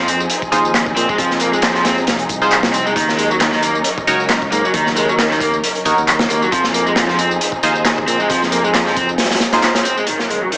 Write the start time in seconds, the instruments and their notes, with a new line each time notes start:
Already playing: fingered electric bass F2, string section F3 C4 D#4 G#4
0.07 overdriven electric guitar C4, closed hi-hat, tambourine
0.20 tambourine
0.30 closed hi-hat, tambourine
0.42 kick, tambourine
0.52 fingered electric bass D#2, synth stab D#4 F4 G#4 C5, closed hi-hat, tambourine
0.65 tambourine
0.74 snare, clap, closed hi-hat, tambourine
0.86 kick, tambourine
0.96 fingered electric bass A#2, overdriven electric guitar C4, closed hi-hat, tambourine
1.09 overdriven electric guitar G#3, kick, tambourine
1.18 fingered electric bass F2, overdriven electric guitar F3, kick, closed hi-hat, tambourine
1.31 snare, tambourine
1.40 overdriven electric guitar A#3, closed hi-hat, tambourine
1.52 overdriven electric guitar G#3, tambourine
1.62 overdriven electric guitar F3, snare, clap, closed hi-hat, tambourine
1.75 overdriven electric guitar F3, snare, tambourine
1.84 overdriven electric guitar C4, snare, closed hi-hat, tambourine
1.98 tambourine
2.07 fingered electric bass F1, snare, closed hi-hat, tambourine
2.19 closed hi-hat, tambourine
2.29 fingered electric bass C2, kick, closed hi-hat, tambourine
2.42 synth stab D#4 F4 G#4 C5, tambourine
2.51 clap, closed hi-hat, tambourine
2.63 snare, tambourine
2.73 overdriven electric guitar C4, closed hi-hat, tambourine
2.85 overdriven electric guitar G#3, tambourine
2.96 fingered electric bass D#2, overdriven electric guitar D#3, string section F#3 C#4 A#4, kick, closed hi-hat, tambourine
3.09 snare, tambourine
3.17 overdriven electric guitar G#3, closed hi-hat, tambourine
3.30 overdriven electric guitar F#3, tambourine
3.40 overdriven electric guitar D#3, snare, clap, closed hi-hat, tambourine
3.52 overdriven electric guitar D#3, snare, tambourine
3.62 overdriven electric guitar A#3, closed hi-hat, tambourine
3.75 tambourine
3.84 closed hi-hat, tambourine
3.98 kick, tambourine
4.07 fingered electric bass C#2, synth stab D#4 F#4 A#4 C#5, closed hi-hat, tambourine
4.20 tambourine
4.29 snare, clap, closed hi-hat, tambourine
4.42 kick, tambourine
4.52 fingered electric bass G#2, overdriven electric guitar A#3, closed hi-hat, tambourine
4.64 overdriven electric guitar F#3, tambourine
4.74 fingered electric bass D#2, overdriven electric guitar D#3, kick, closed hi-hat, tambourine
4.86 snare, tambourine
4.96 overdriven electric guitar G#3, closed hi-hat, tambourine
5.09 overdriven electric guitar F#3, tambourine
5.19 overdriven electric guitar D#3, snare, clap, closed hi-hat, tambourine
5.31 overdriven electric guitar D#3, snare, tambourine
5.40 overdriven electric guitar A#3, kick, closed hi-hat, tambourine
5.54 tambourine
5.64 closed hi-hat, tambourine
5.75 closed hi-hat, tambourine
5.85 fingered electric bass D#2, synth stab D#4 F#4 A#4 C#5, kick, closed hi-hat, tambourine
5.98 fingered electric bass D#2, tambourine
6.08 clap, closed hi-hat, tambourine
6.19 snare, tambourine
6.30 fingered electric bass D#2, overdriven electric guitar A#3, closed hi-hat, tambourine
6.42 overdriven electric guitar F#3, tambourine
6.52 fingered electric bass F2, overdriven electric guitar F3, string section F3 C4 D#4 G#4, kick, closed hi-hat, tambourine
6.64 snare, tambourine
6.74 overdriven electric guitar A#3, closed hi-hat, tambourine
6.87 overdriven electric guitar G#3, tambourine
6.96 overdriven electric guitar F3, snare, clap, closed hi-hat, tambourine
7.09 overdriven electric guitar F3, snare, tambourine
7.18 overdriven electric guitar C4, closed hi-hat, tambourine
7.31 tambourine
7.41 closed hi-hat, tambourine
7.52 kick, tambourine
7.63 fingered electric bass D#2, synth stab D#4 F4 G#4 C5, closed hi-hat, tambourine
7.75 tambourine
7.85 snare, clap, closed hi-hat, tambourine
7.97 kick, tambourine
8.07 fingered electric bass A#2, overdriven electric guitar C4, closed hi-hat, tambourine
8.20 overdriven electric guitar G#3, tambourine
8.30 fingered electric bass F2, overdriven electric guitar F3, kick, closed hi-hat, tambourine
8.42 snare, tambourine
8.52 overdriven electric guitar A#3, closed hi-hat, tambourine
8.64 overdriven electric guitar G#3, tambourine
8.74 overdriven electric guitar F3, snare, clap, closed hi-hat, tambourine
8.86 overdriven electric guitar F3, snare, tambourine
8.96 overdriven electric guitar C4, kick, closed hi-hat, tambourine
9.09 tambourine
9.18 snare, closed hi-hat, tambourine
9.24 snare, closed hi-hat
9.30 snare, closed hi-hat, tambourine
9.35 snare, closed hi-hat
9.40 snare, closed hi-hat, tambourine
9.53 synth stab D#4 F4 G#4 C5, snare, closed hi-hat, tambourine
9.62 snare, clap, closed hi-hat, tambourine
9.75 snare, closed hi-hat, tambourine
9.85 overdriven electric guitar C4, closed hi-hat, tambourine
9.97 overdriven electric guitar G#3, tambourine
10.07 overdriven electric guitar D#3, string section F#3 C#4 D#4 A#4, closed hi-hat, impact
10.19 snare
10.30 overdriven electric guitar G#3, closed hi-hat
10.42 overdriven electric guitar F#3
10.52 overdriven electric guitar D#3, closed hi-hat